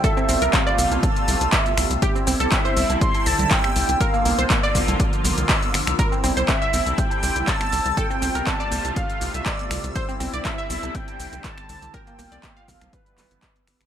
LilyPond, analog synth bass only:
\new Staff \with { instrumentName = "Analog synth bass" } { \clef bass \time 4/4 \key c \mixolydian \tempo 4 = 121 r8 c,16 c,16 r8 c,16 c,16 r8 c,16 c,16 r8 c,16 c,16 | r8 c,16 c,16 r8 c,16 c,16 r8 c,16 c,16 r8 c,16 c,16 | r8 c,16 c,16 r8 c,16 c,16 r8 c,16 c,16 r8 g,,16 c,16 | r8 c,16 c,16 r8 c,16 c,16 r8 c,16 c,16 r8 c,16 c,16 |
r8 c,16 c,16 r8 c,16 c,16 r8 c,16 c,16 r8 c,16 c,16 | r8 c,16 c,16 r8 c,16 c,16 r8 c,16 c,16 r8 c,16 c,16 | r8 c,16 c,16 r8 c,16 c,16 r8 g,,16 g,,16 r8 g,,16 g,,16 | }